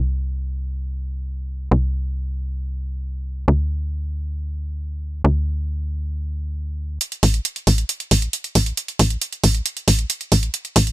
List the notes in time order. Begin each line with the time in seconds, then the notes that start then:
Already playing: C2
1.71 C2
3.48 D2
5.24 D2
7.01 closed hi-hat
7.12 closed hi-hat
7.23 A1, open hi-hat
7.34 closed hi-hat
7.45 closed hi-hat
7.56 closed hi-hat
7.67 A1, open hi-hat
7.78 closed hi-hat
7.89 closed hi-hat
8.00 closed hi-hat
8.11 A1, open hi-hat
8.22 closed hi-hat
8.33 closed hi-hat
8.44 closed hi-hat
8.55 A1, open hi-hat
8.66 closed hi-hat
8.77 closed hi-hat
8.88 closed hi-hat
8.99 A1, open hi-hat
9.10 closed hi-hat
9.21 closed hi-hat
9.33 closed hi-hat
9.44 A1, open hi-hat
9.55 closed hi-hat
9.66 closed hi-hat
9.77 closed hi-hat
9.88 A1, open hi-hat
9.99 closed hi-hat
10.10 closed hi-hat
10.21 closed hi-hat
10.32 A1, open hi-hat
10.43 closed hi-hat
10.54 closed hi-hat
10.65 closed hi-hat
10.76 A1, open hi-hat
10.87 closed hi-hat